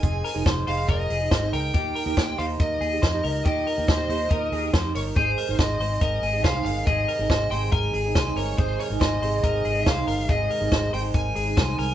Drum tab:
HH |xoxoxoxo|xoxoxoxo|xoxoxoxo|xoxoxoxo|
SD |--o---o-|--o---o-|--o---o-|--o---o-|
BD |o-o-o-o-|o-o-o-o-|o-o-o-o-|o-o-o-o-|

HH |xoxoxoxo|xoxoxoxo|xoxoxoxo|
SD |--o---o-|--o---o-|--o---o-|
BD |o-o-o-o-|o-o-o-o-|o-o-o-o-|